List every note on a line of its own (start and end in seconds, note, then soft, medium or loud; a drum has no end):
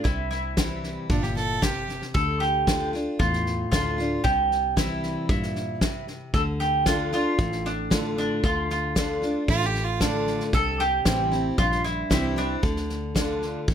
0.04 0.97 C2 medium
0.04 1.05 C3 medium
0.04 0.29 E4 medium
0.04 kick loud
0.04 snare soft
0.31 1.84 E4 medium
0.31 snare soft
0.57 1.07 E3 soft
0.57 1.08 G3 medium
0.57 1.08 C4 medium
0.57 1.08 E4 medium
0.57 kick medium
0.57 snare loud
0.57 hi-hat pedal medium
0.84 snare soft
1.09 2.01 G1 medium
1.09 1.60 A#2 medium
1.09 1.25 D4 medium
1.09 kick loud
1.09 snare soft
1.23 1.35 G4 medium
1.23 snare soft
1.36 1.64 A4 medium
1.36 snare soft
1.62 2.12 C3 medium
1.62 2.01 G4 medium
1.62 kick medium
1.62 snare medium
1.62 hi-hat pedal medium
1.89 snare soft
2.02 snare soft
2.14 3.06 D2 medium
2.14 2.66 D3 medium
2.14 2.42 A4 loud
2.14 kick loud
2.14 snare soft
2.40 2.89 G4 medium
2.40 snare soft
2.67 2.92 D3 medium
2.67 2.93 A3 medium
2.67 2.93 D4 medium
2.67 2.92 F4 medium
2.67 kick medium
2.67 snare loud
2.67 hi-hat pedal medium
2.93 3.20 D4 soft
2.93 3.19 F4 medium
2.93 snare soft
3.19 3.64 E2 medium
3.19 4.19 A2 medium
3.19 3.70 F4 medium
3.19 kick loud
3.19 snare soft
3.33 snare soft
3.46 snare soft
3.71 4.17 D2 medium
3.71 3.97 D3 medium
3.71 3.98 A3 medium
3.71 3.98 D4 medium
3.71 4.23 F4 medium
3.71 3.97 F4 medium
3.71 kick medium
3.71 snare loud
3.71 hi-hat pedal medium
3.98 4.25 D4 soft
3.98 4.23 F4 medium
3.98 snare soft
4.24 5.16 C2 medium
4.24 5.24 C3 medium
4.24 4.77 G4 loud
4.24 kick loud
4.24 snare soft
4.51 snare soft
4.76 5.27 E3 medium
4.76 5.27 G3 medium
4.76 5.27 C4 medium
4.76 5.29 E4 medium
4.76 5.28 E4 medium
4.76 kick medium
4.76 snare loud
4.76 hi-hat pedal medium
5.03 snare soft
5.29 6.21 G2 medium
5.29 5.79 A#2 medium
5.29 6.04 E4 medium
5.29 kick loud
5.29 snare soft
5.43 snare soft
5.55 snare soft
5.81 6.32 C3 medium
5.81 kick medium
5.81 snare loud
5.81 hi-hat pedal medium
6.08 snare soft
6.33 7.26 D2 medium
6.33 6.85 D3 medium
6.33 6.41 A4 loud
6.33 kick medium
6.33 snare soft
6.60 6.85 G4 medium
6.60 snare soft
6.86 7.12 D3 medium
6.86 7.12 A3 medium
6.86 7.28 D4 medium
6.86 7.13 D4 medium
6.86 7.28 F4 medium
6.86 7.13 F4 medium
6.86 7.11 F4 medium
6.86 7.28 A4 medium
6.86 kick medium
6.86 snare loud
6.86 hi-hat pedal medium
7.12 7.39 D4 soft
7.12 7.38 F4 medium
7.12 7.67 F4 medium
7.12 snare soft
7.38 8.30 A1 medium
7.38 8.39 A2 medium
7.38 kick loud
7.38 snare soft
7.52 snare soft
7.65 8.14 D4 medium
7.65 snare soft
7.90 8.41 D3 medium
7.90 8.41 A3 medium
7.90 8.32 D4 medium
7.90 8.42 D4 medium
7.90 8.33 F4 medium
7.90 8.42 F4 medium
7.90 8.33 A4 medium
7.90 kick medium
7.90 snare loud
7.90 hi-hat pedal medium
8.17 8.44 D4 medium
8.17 snare soft
8.43 9.35 D2 medium
8.43 8.94 D3 medium
8.43 8.69 F4 medium
8.43 kick loud
8.43 snare soft
8.70 10.24 F4 medium
8.70 snare soft
8.95 9.21 D3 soft
8.95 9.22 A3 medium
8.95 9.37 D4 medium
8.95 9.22 D4 medium
8.95 9.38 F4 medium
8.95 9.20 F4 medium
8.95 9.38 A4 medium
8.95 kick medium
8.95 snare loud
8.95 hi-hat pedal medium
9.22 9.49 D4 soft
9.22 9.47 F4 medium
9.22 snare soft
9.48 10.40 A1 medium
9.48 10.48 A2 medium
9.48 9.67 F4 loud
9.48 kick loud
9.48 snare soft
9.62 snare soft
9.66 9.85 G4 medium
9.75 snare soft
9.84 10.03 F4 medium
10.00 10.51 D3 medium
10.00 10.51 A3 medium
10.00 10.42 D4 medium
10.00 10.39 D4 medium
10.00 10.51 D4 medium
10.00 10.42 F4 medium
10.00 10.52 F4 medium
10.00 10.43 A4 medium
10.00 kick medium
10.00 snare medium
10.00 hi-hat pedal medium
10.27 snare soft
10.40 snare soft
10.53 10.99 C2 medium
10.53 11.53 C3 medium
10.53 10.81 A4 loud
10.53 kick loud
10.53 snare soft
10.79 11.58 G4 loud
10.79 snare soft
11.05 11.51 A1 medium
11.05 11.31 E3 medium
11.05 11.32 G3 medium
11.05 11.47 C4 medium
11.05 11.32 C4 medium
11.05 11.47 E4 medium
11.05 11.30 E4 medium
11.05 11.48 G4 medium
11.05 kick medium
11.05 snare loud
11.05 hi-hat pedal medium
11.32 11.58 C4 soft
11.32 11.57 E4 medium
11.32 snare soft
11.58 12.03 A#1 medium
11.58 12.58 G2 medium
11.58 11.84 F4 loud
11.58 kick loud
11.58 snare soft
11.72 snare soft
11.84 12.09 E4 medium
11.84 snare soft
12.10 12.56 C2 medium
12.10 12.36 E3 medium
12.10 12.36 G3 medium
12.10 12.52 C4 medium
12.10 12.36 C4 medium
12.10 12.38 E4 medium
12.10 12.52 E4 medium
12.10 12.35 E4 medium
12.10 12.53 G4 medium
12.10 kick medium
12.10 snare loud
12.10 hi-hat pedal medium
12.36 12.63 C4 soft
12.36 13.74 D4 medium
12.36 12.62 E4 soft
12.36 snare soft
12.63 13.55 D2 medium
12.63 13.13 D3 medium
12.63 kick loud
12.63 snare soft
12.76 snare soft
12.89 snare soft
13.15 13.65 D3 medium
13.15 13.65 A3 medium
13.15 13.57 D4 medium
13.15 13.66 D4 medium
13.15 13.57 F4 medium
13.15 13.66 F4 medium
13.15 13.57 A4 medium
13.15 kick medium
13.15 snare loud
13.15 hi-hat pedal medium
13.42 snare soft
13.68 13.74 A1 medium
13.68 13.74 A2 medium
13.68 kick loud
13.68 snare soft